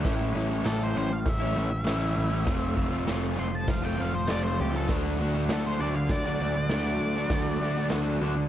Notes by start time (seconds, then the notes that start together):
0.03 A1 A2 E3 A3 C#4 E4, kick, snare, open hi-hat
0.33 A1 E3 A3 C#4 E4
0.49 A3 C#4 E4
0.65 A1 A2 E3 A3 C#4 E4 A4, snare, clap, open hi-hat
0.83 C5
0.95 A1 E3 A3 C#4 E4 C5
1.11 F5, muted overdriven electric guitar stroke
1.26 A1 E5, kick, snare, open hi-hat
1.40 A3 C#4 E4
1.55 A1 E3 A3 C#4 E4
1.71 muted overdriven electric guitar stroke
1.84 A1 A2 E3 A3 C#4 E4, snare, clap, open hi-hat
2.17 A1
2.30 A3 C#4 E4
2.45 F1 F3 A3 C4 F4, kick, snare, open hi-hat
2.76 F1 F3 A3 C4 F4, kick
2.90 A3 C4 F4
3.05 F1 F3 A3 C4 F4, snare, clap, open hi-hat
3.36 F1 F3 A3 C4 F4 C6
3.52 A5, muted overdriven electric guitar stroke
3.68 F1 F5, kick, snare, open hi-hat
3.82 A3 C4 F4 G5
3.96 F1 F3 A3 C4 F4
4.01 F5
4.13 C5, muted overdriven electric guitar stroke
4.27 F1 F3 A3 C4 F4 D5, snare, clap, open hi-hat
4.44 C5
4.60 C#2 G4
4.73 A3 C4 F4 A4
4.88 D2 D3 A3 D4 F#4, kick, snare, crash
5.19 D2 D3 A3 D4 F#4
5.35 A3 D4 F#4
5.49 D2 D3 A3 D4, snare, clap, open hi-hat
5.53 F#4 A4
5.67 C5
5.79 D2 D3 A3 D4 F#4 D5
5.95 F5, muted overdriven electric guitar stroke
6.09 D2 D5, kick, snare, open hi-hat
6.25 A3 D4 F#4
6.40 D2 D3 A3 D4 F#4
6.57 muted overdriven electric guitar stroke
6.69 D2 D3 A3, snare, clap, open hi-hat
6.74 D4 F#4
7.00 D2
7.16 A3 D4 F#4
7.30 D2 D3 A3 D4 F#4, kick, snare, open hi-hat
7.61 D2 D3 A3 D4
7.65 F#4
7.77 A3 D4 F#4
7.90 D2 D3 A3, snare, clap, open hi-hat
7.95 D4 F#4
8.21 D2 D3 A3 D4
8.25 F#4
8.37 muted overdriven electric guitar stroke